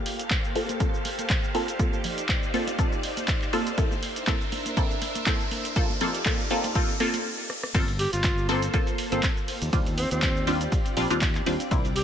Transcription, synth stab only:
0.55 A#3 C4 F4 A4
0.80 A#3 C4 F4 A4
1.54 A#3 C4 F4 A4
1.79 A#3 C4 F4 A4
2.54 A#3 C4 F4 A4
2.78 A#3 C4 F4 A4
3.53 A#3 C4 F4 A4
3.78 A#3 C4 E4 A4
4.27 A#3 C4 E4 A4
4.77 A#3 C4 E4 A4
5.26 A#3 C4 E4 A4
5.76 A#3 C4 F4 A4
6.01 A#3 C4 F4 A4
6.26 A#3 C4 F4 A4
6.50 A#3 C4 F4 A4
6.75 A#3 C4 F4 A4
7.00 A#3 C4 F4 A4
7.74 A#3 C4 F4 A4
8.49 A#3 C4 F4 A4
8.74 A#3 C4 F4 A4
9.12 A#3 C4 F4 A4
9.73 G3 C4 D4 F4
10.47 G3 C4 D4 F4
10.97 G3 C4 D4 F4
11.10 G3 C4 D4 F4
11.46 G3 C4 D4 F4
11.71 A#3 C4 D4 E4

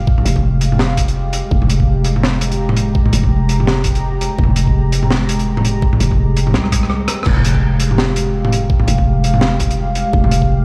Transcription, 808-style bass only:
Already playing: F1
0.25 F1
1.51 F1
3.13 F1
4.39 F1
6.00 F1
6.54 C2
7.26 F1
8.88 F1
10.13 F1

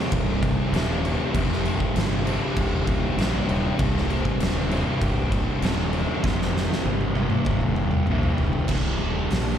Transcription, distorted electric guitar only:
Already playing: C2 G2 C3
0.72 C2 G2 C3
1.32 C2 G2 C3
2.25 C2 G2 C3
3.17 C2 G2 C3
3.77 C2 G2 C3
4.69 C2 G2 C3
5.61 C2 G2 C3
6.22 C2 G2 C3
7.15 C2 G2 C3
8.08 C2 G2 C3
8.68 C2 G2 C3

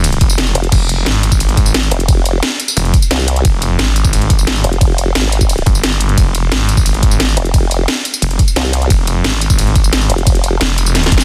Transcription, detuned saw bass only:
Already playing: F1
0.21 F1
0.72 F1
1.06 G#1
2.77 F1
3.45 F1
5.66 G1
6.18 F1
6.52 G#1
8.22 F1
8.90 F1
9.24 G#1
10.61 F1
11.12 F1

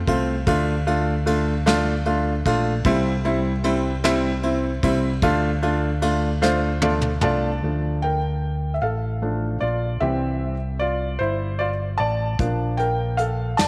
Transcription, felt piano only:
0.07 A3 C4 F4
0.47 A3 D4 F4
0.87 A3 D4 F4
1.26 A3 D4 F4
1.66 A3 D4 F4
2.06 A3 D4 F4
2.46 A3 D4 F4
2.85 G3 C4 E4
3.24 G3 C4 E4
3.64 G3 C4 E4
4.04 G3 C4 E4
4.43 C4 E4
4.83 G3 C4 E4
5.23 A3 D4 F4
5.62 A3 D4 F4
6.02 A3 D4 F4
6.42 A3 D4 F4 C5
6.82 A3 D4 F4 D5
7.22 A3 D4 F4 D5 A5
7.63 F3 A3 D4
8.02 A#4 G5
8.74 E5
8.82 A4 F5
9.22 F3 A3 D4
9.61 F4 D5
10.00 E3 G3 C4 G4 E5
10.80 F4 D5
11.19 E4 C5
11.59 F4 D5
11.98 D5 A5
12.39 F3 A#3 D4
12.77 A#4 G5
13.17 A4 F5
13.57 D5 A5

